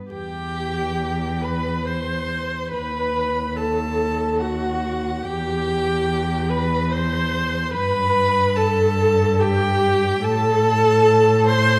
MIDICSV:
0, 0, Header, 1, 5, 480
1, 0, Start_track
1, 0, Key_signature, 1, "minor"
1, 0, Tempo, 875912
1, 65, Time_signature, 3, 2, 24, 8
1, 1024, Tempo, 846262
1, 2464, Tempo, 833333
1, 6719, End_track
2, 0, Start_track
2, 0, Title_t, "Violin"
2, 0, Program_c, 0, 40
2, 66, Note_on_c, 0, 79, 88
2, 790, Note_on_c, 0, 83, 82
2, 798, Note_off_c, 0, 79, 0
2, 1026, Note_on_c, 0, 84, 81
2, 1034, Note_off_c, 0, 83, 0
2, 1499, Note_off_c, 0, 84, 0
2, 1502, Note_on_c, 0, 83, 89
2, 1987, Note_on_c, 0, 81, 87
2, 1996, Note_off_c, 0, 83, 0
2, 2458, Note_off_c, 0, 81, 0
2, 2461, Note_on_c, 0, 78, 82
2, 2948, Note_on_c, 0, 79, 100
2, 2957, Note_off_c, 0, 78, 0
2, 3671, Note_on_c, 0, 83, 95
2, 3680, Note_off_c, 0, 79, 0
2, 3914, Note_on_c, 0, 84, 95
2, 3923, Note_off_c, 0, 83, 0
2, 4381, Note_off_c, 0, 84, 0
2, 4384, Note_on_c, 0, 83, 116
2, 4856, Note_on_c, 0, 81, 110
2, 4865, Note_off_c, 0, 83, 0
2, 5345, Note_on_c, 0, 79, 115
2, 5354, Note_off_c, 0, 81, 0
2, 5827, Note_on_c, 0, 81, 127
2, 5836, Note_off_c, 0, 79, 0
2, 6540, Note_off_c, 0, 81, 0
2, 6544, Note_on_c, 0, 84, 127
2, 6719, Note_off_c, 0, 84, 0
2, 6719, End_track
3, 0, Start_track
3, 0, Title_t, "Viola"
3, 0, Program_c, 1, 41
3, 61, Note_on_c, 1, 67, 64
3, 764, Note_off_c, 1, 67, 0
3, 789, Note_on_c, 1, 71, 65
3, 1025, Note_on_c, 1, 72, 72
3, 1034, Note_off_c, 1, 71, 0
3, 1505, Note_off_c, 1, 72, 0
3, 1510, Note_on_c, 1, 71, 69
3, 1983, Note_on_c, 1, 69, 71
3, 1992, Note_off_c, 1, 71, 0
3, 2466, Note_on_c, 1, 66, 74
3, 2475, Note_off_c, 1, 69, 0
3, 2944, Note_off_c, 1, 66, 0
3, 2948, Note_on_c, 1, 67, 72
3, 3667, Note_on_c, 1, 71, 74
3, 3676, Note_off_c, 1, 67, 0
3, 3911, Note_on_c, 1, 72, 90
3, 3919, Note_off_c, 1, 71, 0
3, 4378, Note_off_c, 1, 72, 0
3, 4381, Note_on_c, 1, 71, 83
3, 4860, Note_on_c, 1, 69, 87
3, 4868, Note_off_c, 1, 71, 0
3, 5339, Note_on_c, 1, 67, 105
3, 5348, Note_off_c, 1, 69, 0
3, 5814, Note_off_c, 1, 67, 0
3, 5818, Note_on_c, 1, 69, 96
3, 6543, Note_on_c, 1, 72, 108
3, 6552, Note_off_c, 1, 69, 0
3, 6719, Note_off_c, 1, 72, 0
3, 6719, End_track
4, 0, Start_track
4, 0, Title_t, "Violin"
4, 0, Program_c, 2, 40
4, 61, Note_on_c, 2, 67, 65
4, 777, Note_on_c, 2, 71, 61
4, 785, Note_off_c, 2, 67, 0
4, 1017, Note_on_c, 2, 72, 63
4, 1025, Note_off_c, 2, 71, 0
4, 1495, Note_off_c, 2, 72, 0
4, 1499, Note_on_c, 2, 71, 71
4, 1985, Note_on_c, 2, 69, 59
4, 1993, Note_off_c, 2, 71, 0
4, 2464, Note_on_c, 2, 66, 63
4, 2473, Note_off_c, 2, 69, 0
4, 2939, Note_on_c, 2, 67, 78
4, 2948, Note_off_c, 2, 66, 0
4, 3671, Note_on_c, 2, 71, 69
4, 3680, Note_off_c, 2, 67, 0
4, 3902, Note_on_c, 2, 72, 76
4, 3911, Note_off_c, 2, 71, 0
4, 4376, Note_off_c, 2, 72, 0
4, 4380, Note_on_c, 2, 71, 94
4, 4861, Note_on_c, 2, 69, 82
4, 4870, Note_off_c, 2, 71, 0
4, 5350, Note_on_c, 2, 67, 87
4, 5359, Note_off_c, 2, 69, 0
4, 5815, Note_on_c, 2, 69, 105
4, 5824, Note_off_c, 2, 67, 0
4, 6525, Note_off_c, 2, 69, 0
4, 6528, Note_on_c, 2, 72, 98
4, 6719, Note_off_c, 2, 72, 0
4, 6719, End_track
5, 0, Start_track
5, 0, Title_t, "Cello"
5, 0, Program_c, 3, 42
5, 66, Note_on_c, 3, 40, 48
5, 1500, Note_on_c, 3, 39, 51
5, 1508, Note_off_c, 3, 40, 0
5, 2939, Note_on_c, 3, 40, 63
5, 2948, Note_off_c, 3, 39, 0
5, 4383, Note_on_c, 3, 43, 70
5, 4391, Note_off_c, 3, 40, 0
5, 5811, Note_off_c, 3, 43, 0
5, 5815, Note_on_c, 3, 45, 79
5, 6719, Note_off_c, 3, 45, 0
5, 6719, End_track
0, 0, End_of_file